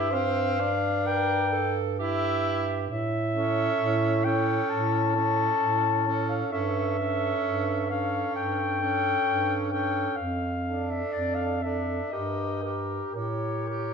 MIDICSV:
0, 0, Header, 1, 5, 480
1, 0, Start_track
1, 0, Tempo, 936037
1, 1024, Tempo, 909091
1, 1498, Time_signature, 4, 2, 24, 8
1, 5344, Tempo, 972447
1, 6304, Tempo, 1022147
1, 6784, Tempo, 1083032
1, 7134, End_track
2, 0, Start_track
2, 0, Title_t, "Clarinet"
2, 0, Program_c, 0, 71
2, 0, Note_on_c, 0, 76, 93
2, 65, Note_on_c, 0, 77, 96
2, 72, Note_off_c, 0, 76, 0
2, 547, Note_on_c, 0, 79, 105
2, 555, Note_off_c, 0, 77, 0
2, 888, Note_off_c, 0, 79, 0
2, 1026, Note_on_c, 0, 76, 96
2, 1478, Note_off_c, 0, 76, 0
2, 1506, Note_on_c, 0, 76, 98
2, 2209, Note_on_c, 0, 79, 82
2, 2217, Note_off_c, 0, 76, 0
2, 2449, Note_on_c, 0, 81, 97
2, 2457, Note_off_c, 0, 79, 0
2, 3288, Note_off_c, 0, 81, 0
2, 3292, Note_on_c, 0, 77, 69
2, 3410, Note_off_c, 0, 77, 0
2, 3413, Note_on_c, 0, 76, 95
2, 4128, Note_off_c, 0, 76, 0
2, 4141, Note_on_c, 0, 77, 82
2, 4377, Note_off_c, 0, 77, 0
2, 4382, Note_on_c, 0, 79, 98
2, 5009, Note_off_c, 0, 79, 0
2, 5098, Note_on_c, 0, 79, 82
2, 5335, Note_on_c, 0, 77, 73
2, 5343, Note_off_c, 0, 79, 0
2, 5698, Note_on_c, 0, 76, 68
2, 5706, Note_off_c, 0, 77, 0
2, 5809, Note_on_c, 0, 74, 77
2, 5816, Note_off_c, 0, 76, 0
2, 5920, Note_on_c, 0, 77, 73
2, 5927, Note_off_c, 0, 74, 0
2, 6055, Note_on_c, 0, 76, 73
2, 6062, Note_off_c, 0, 77, 0
2, 6303, Note_on_c, 0, 75, 71
2, 6310, Note_off_c, 0, 76, 0
2, 6642, Note_off_c, 0, 75, 0
2, 6789, Note_on_c, 0, 73, 70
2, 7134, Note_off_c, 0, 73, 0
2, 7134, End_track
3, 0, Start_track
3, 0, Title_t, "Alto saxophone"
3, 0, Program_c, 1, 65
3, 0, Note_on_c, 1, 67, 64
3, 55, Note_on_c, 1, 72, 65
3, 62, Note_off_c, 1, 67, 0
3, 401, Note_off_c, 1, 72, 0
3, 539, Note_on_c, 1, 70, 71
3, 780, Note_on_c, 1, 69, 63
3, 788, Note_off_c, 1, 70, 0
3, 1017, Note_off_c, 1, 69, 0
3, 1021, Note_on_c, 1, 67, 62
3, 1486, Note_off_c, 1, 67, 0
3, 1739, Note_on_c, 1, 69, 59
3, 2208, Note_off_c, 1, 69, 0
3, 2223, Note_on_c, 1, 69, 58
3, 2684, Note_off_c, 1, 69, 0
3, 2687, Note_on_c, 1, 69, 52
3, 3163, Note_off_c, 1, 69, 0
3, 3178, Note_on_c, 1, 69, 50
3, 3412, Note_off_c, 1, 69, 0
3, 3415, Note_on_c, 1, 69, 51
3, 3652, Note_off_c, 1, 69, 0
3, 3660, Note_on_c, 1, 69, 54
3, 4136, Note_off_c, 1, 69, 0
3, 4144, Note_on_c, 1, 69, 50
3, 4613, Note_off_c, 1, 69, 0
3, 4622, Note_on_c, 1, 69, 54
3, 5093, Note_off_c, 1, 69, 0
3, 5105, Note_on_c, 1, 69, 50
3, 5340, Note_off_c, 1, 69, 0
3, 5575, Note_on_c, 1, 69, 45
3, 6048, Note_off_c, 1, 69, 0
3, 6060, Note_on_c, 1, 69, 46
3, 6300, Note_off_c, 1, 69, 0
3, 6302, Note_on_c, 1, 70, 46
3, 6535, Note_off_c, 1, 70, 0
3, 6539, Note_on_c, 1, 70, 42
3, 6778, Note_off_c, 1, 70, 0
3, 6781, Note_on_c, 1, 70, 37
3, 7015, Note_off_c, 1, 70, 0
3, 7019, Note_on_c, 1, 70, 39
3, 7134, Note_off_c, 1, 70, 0
3, 7134, End_track
4, 0, Start_track
4, 0, Title_t, "Tenor saxophone"
4, 0, Program_c, 2, 66
4, 0, Note_on_c, 2, 64, 54
4, 65, Note_on_c, 2, 60, 68
4, 73, Note_off_c, 2, 64, 0
4, 306, Note_on_c, 2, 62, 62
4, 314, Note_off_c, 2, 60, 0
4, 887, Note_off_c, 2, 62, 0
4, 1025, Note_on_c, 2, 64, 64
4, 1477, Note_off_c, 2, 64, 0
4, 1729, Note_on_c, 2, 61, 63
4, 2203, Note_off_c, 2, 61, 0
4, 2215, Note_on_c, 2, 61, 60
4, 2682, Note_off_c, 2, 61, 0
4, 2691, Note_on_c, 2, 61, 59
4, 3165, Note_off_c, 2, 61, 0
4, 3175, Note_on_c, 2, 61, 53
4, 3410, Note_off_c, 2, 61, 0
4, 3413, Note_on_c, 2, 61, 53
4, 3651, Note_off_c, 2, 61, 0
4, 3657, Note_on_c, 2, 61, 59
4, 4134, Note_off_c, 2, 61, 0
4, 4141, Note_on_c, 2, 61, 50
4, 4611, Note_off_c, 2, 61, 0
4, 4627, Note_on_c, 2, 61, 46
4, 5095, Note_off_c, 2, 61, 0
4, 5105, Note_on_c, 2, 61, 49
4, 5340, Note_off_c, 2, 61, 0
4, 5576, Note_on_c, 2, 62, 51
4, 6049, Note_off_c, 2, 62, 0
4, 6062, Note_on_c, 2, 62, 45
4, 6301, Note_off_c, 2, 62, 0
4, 6304, Note_on_c, 2, 67, 39
4, 6536, Note_off_c, 2, 67, 0
4, 6542, Note_on_c, 2, 67, 35
4, 6779, Note_off_c, 2, 67, 0
4, 6788, Note_on_c, 2, 67, 39
4, 7019, Note_off_c, 2, 67, 0
4, 7023, Note_on_c, 2, 67, 37
4, 7134, Note_off_c, 2, 67, 0
4, 7134, End_track
5, 0, Start_track
5, 0, Title_t, "Bass clarinet"
5, 0, Program_c, 3, 71
5, 0, Note_on_c, 3, 43, 66
5, 1475, Note_off_c, 3, 43, 0
5, 1497, Note_on_c, 3, 45, 70
5, 1918, Note_off_c, 3, 45, 0
5, 1976, Note_on_c, 3, 45, 79
5, 2396, Note_off_c, 3, 45, 0
5, 2455, Note_on_c, 3, 45, 69
5, 2877, Note_off_c, 3, 45, 0
5, 2937, Note_on_c, 3, 45, 62
5, 3362, Note_off_c, 3, 45, 0
5, 3418, Note_on_c, 3, 43, 68
5, 3843, Note_off_c, 3, 43, 0
5, 3899, Note_on_c, 3, 43, 66
5, 4327, Note_off_c, 3, 43, 0
5, 4384, Note_on_c, 3, 43, 58
5, 4806, Note_off_c, 3, 43, 0
5, 4861, Note_on_c, 3, 43, 60
5, 5285, Note_off_c, 3, 43, 0
5, 5344, Note_on_c, 3, 41, 60
5, 5761, Note_off_c, 3, 41, 0
5, 5818, Note_on_c, 3, 41, 59
5, 6247, Note_off_c, 3, 41, 0
5, 6306, Note_on_c, 3, 43, 54
5, 6727, Note_off_c, 3, 43, 0
5, 6784, Note_on_c, 3, 45, 51
5, 7134, Note_off_c, 3, 45, 0
5, 7134, End_track
0, 0, End_of_file